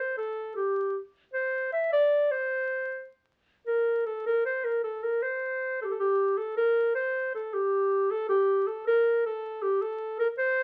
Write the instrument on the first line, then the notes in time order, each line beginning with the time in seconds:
clarinet
Already playing: C5
0.17 A4
0.56 G4
1.33 C5
1.73 E5
1.92 D5
2.31 C5
3.67 A#4
4.06 A4
4.26 A#4
4.45 C5
4.64 A#4
4.83 A4
5.03 A#4
5.23 C5
5.81 G4 A4
5.91 A4
5.99 G4
6.38 A4
6.57 A#4
6.95 C5
7.35 A4
7.54 G4
8.11 A4
8.29 G4
8.67 A4
8.87 A#4
9.26 A4
9.62 G4
9.81 A4
10.19 A#4
10.38 C5